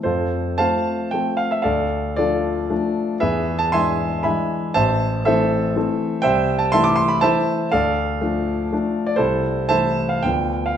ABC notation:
X:1
M:3/4
L:1/16
Q:1/4=118
K:Am
V:1 name="Grand piano"
[FAc]4 [cfa]4 g2 f e | [Adf]4 [FAd]8 | [^GBe]3 a [e^gc']4 [egb]4 | [cea]4 [Ace]8 |
[ceg]3 a [eac'] d' c' b [cea]4 | [Adf]8- [Adf]3 d | [EAc]4 [cea]3 f g3 f |]
V:2 name="Grand piano"
F,,4 [F,A,C]4 [F,A,C]4 | D,,4 [F,A,D]4 [F,A,D]4 | E,,4 [E,^G,D]4 [E,G,D]4 | A,,,4 [E,A,C]4 [E,A,C]4 |
C,,4 [E,A,E]4 [E,A,E]4 | D,,4 [F,A,D]4 [F,A,D]4 | C,,4 [E,A,E]4 [D,,F,B,D]4 |]